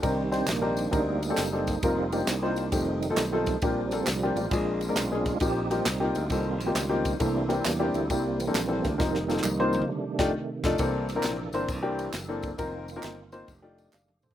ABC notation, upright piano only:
X:1
M:4/4
L:1/16
Q:"Swing" 1/4=134
K:Cdor
V:1 name="Upright piano"
[CDEGB] z [CDEGc]2 z [CDEGB]2 z [CDEGB]2 z [CDEGA] z [CDEGA]2 z | [B,CEFB] z [B,CEFG]2 z [B,CEFc]2 z [A,CEFG]2 z [A,CEFA] z [A,CEFA]2 z | [B,CDFG] z [B,CDFA]2 z [B,CDFG]2 z [_A,B,DF_A]2 z [A,B,DFB] z [A,B,DFA]2 z | [B,CEFG] z [B,CEFG]2 z [B,CEFG]2 z [B,CEFA]2 z [B,CEFG] z [B,CEFG]2 z |
[B,CD=EA] z [B,CDEG]2 z [B,CDEG]2 z [B,CDEG]2 z [B,CDEA] z [B,CDEA]2 z | [B,CEFB] z [B,CEFA]2 z [B,CEFc]2 z3 [A,DEFG]2 z2 [A,DEFA]2 | [B,CD=EA]2 z [B,CDEB]2 z [B,CDEc]2 z [B,CDEG]2 z2 [B,CDEA]2 z | [B,CEFB]2 z [B,CEFB]2 z [B,CEFc]2 z [A,DEFG]2 z [df]2 [Ac]2 |]
V:2 name="Upright piano" clef=bass
C,6 z8 z2 | z16 | B,,6 z2 B,,6 z2 | B,,6 z8 z2 |
C,6 z8 z2 | z16 | C,6 z8 z2 | z16 |]